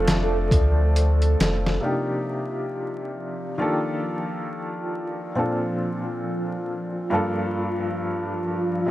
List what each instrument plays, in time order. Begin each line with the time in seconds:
Already playing: sub bass F1, upright piano F3 A3 C4 D4, string machine A4
0.08 snare, closed hi-hat
0.51 sub bass D2, kick, closed hi-hat
0.96 closed hi-hat
1.22 closed hi-hat
1.39 sub bass F1, snare, closed hi-hat
1.67 snare
1.81 upright piano C3 A#3 D4 D#4 F4 G4, string machine F4
3.58 upright piano D#3 A#3 D4 F4 G4 A4
5.35 upright piano A#2 C4 D4 F4 A4
7.10 upright piano G2 A#3 D4 F4 A4
8.86 upright piano C3 A#3 D4